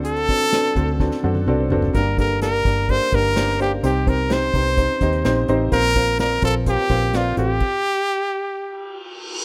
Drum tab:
CC |----------------|----------------|----------------|----------------|
HH |xxx-x-x---------|x-x-x-x-x-xxx-x-|x-x-x-x-x-xxx-x-|x-x-x-x-x-x-x-x-|
SD |----o---oo------|----o-------oo--|----o-------o---|----o-------o---|
T1 |----------oo----|----------------|----------------|----------------|
T2 |------------o---|----------------|----------------|----------------|
FT |--------------oo|----------------|----------------|----------------|
BD |--o---o-o-------|o-o---o-o-o-----|--o---o-o-o-----|o-o---o-o-o-----|

CC |x---------------|
HH |----------------|
SD |----------------|
T1 |----------------|
T2 |----------------|
FT |----------------|
BD |o---------------|